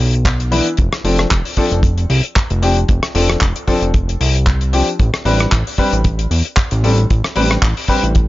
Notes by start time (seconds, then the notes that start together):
0.00 B1, open hi-hat
0.13 closed hi-hat
0.25 kick, clap, closed hi-hat
0.40 closed hi-hat
0.51 E3 B3 D4 E4, open hi-hat
0.66 closed hi-hat
0.77 F1, kick, closed hi-hat
0.93 cross-stick, closed hi-hat
1.04 F1 F3 C4 D4 A4, open hi-hat
1.18 cross-stick, closed hi-hat
1.31 F1, kick, clap, closed hi-hat
1.45 open hi-hat
1.57 F3 C4 D4 A4, kick, open hi-hat
1.71 F1, closed hi-hat
1.83 kick, closed hi-hat
1.98 closed hi-hat
2.10 C2, open hi-hat
2.24 closed hi-hat
2.36 kick, cross-stick, clap, closed hi-hat
2.50 F1, closed hi-hat
2.62 F3 C4 D4 G4, open hi-hat
2.77 closed hi-hat
2.89 F1, kick, closed hi-hat
3.03 cross-stick, closed hi-hat
3.15 F1 F3 C4 D4 A4, open hi-hat
3.30 cross-stick, closed hi-hat
3.41 F1, kick, clap, closed hi-hat
3.56 closed hi-hat
3.67 F1 F3 C4 D4 A4, kick, open hi-hat
3.82 F1, closed hi-hat
3.94 kick, closed hi-hat
4.09 closed hi-hat
4.21 C2, open hi-hat
4.35 closed hi-hat
4.47 kick, clap, closed hi-hat
4.61 closed hi-hat
4.73 F3 C4 D4 G4, open hi-hat
4.88 closed hi-hat
4.99 A1, kick, closed hi-hat
5.14 cross-stick, closed hi-hat
5.25 A1 G3 C4 D4 B4, open hi-hat
5.40 cross-stick, closed hi-hat
5.52 A1, kick, clap, closed hi-hat
5.67 open hi-hat
5.78 G3 C4 D4 B4, kick, open hi-hat
5.93 A1, closed hi-hat
6.04 kick, closed hi-hat
6.19 closed hi-hat
6.31 E2, open hi-hat
6.45 closed hi-hat
6.57 kick, cross-stick, clap, closed hi-hat
6.71 A1, closed hi-hat
6.83 G3 C4 D4 A4, open hi-hat
6.98 closed hi-hat
7.10 A1, kick, closed hi-hat
7.24 cross-stick, closed hi-hat
7.35 A1 G3 C4 D4 B4, open hi-hat
7.51 cross-stick, closed hi-hat
7.62 A1, kick, clap, closed hi-hat
7.77 open hi-hat
7.88 A1 G3 C4 D4 B4, kick, open hi-hat
8.03 A1, closed hi-hat
8.15 kick, closed hi-hat